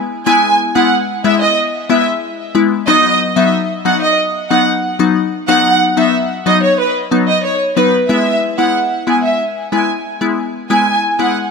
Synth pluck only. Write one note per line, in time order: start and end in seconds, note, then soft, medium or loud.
0.26 0.72 G#3 loud
0.26 0.72 B3 medium
0.26 0.72 E4 loud
0.75 0.93 G#3 medium
0.75 0.93 B3 medium
0.75 0.93 E4 medium
1.24 1.42 G#3 medium
1.24 1.42 B3 medium
1.24 1.42 E4 medium
1.89 2.07 G#3 medium
1.89 2.07 B3 medium
1.89 2.08 E4 medium
2.55 2.73 G#3 medium
2.55 2.73 B3 medium
2.55 2.73 E4 medium
2.87 3.33 F#3 medium
2.87 3.33 B3 medium
2.87 3.33 D#4 loud
3.36 3.54 F#3 medium
3.36 3.54 B3 medium
3.36 3.54 D#4 medium
3.85 4.03 F#3 medium
3.85 4.03 B3 medium
3.85 4.03 D#4 medium
4.50 4.68 F#3 medium
4.50 4.68 B3 medium
4.50 4.68 D#4 medium
4.99 5.17 F#3 medium
4.99 5.17 B3 medium
4.99 5.17 D#4 medium
5.48 5.93 F#3 medium
5.48 5.93 B3 medium
5.48 5.94 D#4 loud
5.97 6.15 F#3 medium
5.97 6.15 B3 medium
5.97 6.15 D#4 medium
6.46 6.64 F#3 medium
6.46 6.64 B3 medium
6.46 6.64 D#4 medium
7.11 7.29 F#3 medium
7.11 7.29 B3 medium
7.11 7.29 D#4 medium
7.77 7.94 F#3 medium
7.77 7.94 B3 medium
7.77 7.95 D#4 medium
8.09 8.54 G#3 medium
8.09 8.54 B3 medium
8.09 8.55 E4 medium
8.58 8.76 G#3 medium
8.58 8.76 B3 medium
8.58 8.76 E4 medium
9.07 9.25 G#3 medium
9.07 9.25 B3 medium
9.07 9.25 E4 medium
9.72 9.90 G#3 medium
9.72 9.90 B3 medium
9.72 9.90 E4 medium
10.21 10.39 G#3 medium
10.21 10.39 B3 medium
10.21 10.39 E4 medium
10.70 11.15 G#3 medium
10.70 11.15 B3 medium
10.70 11.15 E4 loud
11.19 11.37 G#3 medium
11.19 11.37 B3 medium
11.19 11.37 E4 medium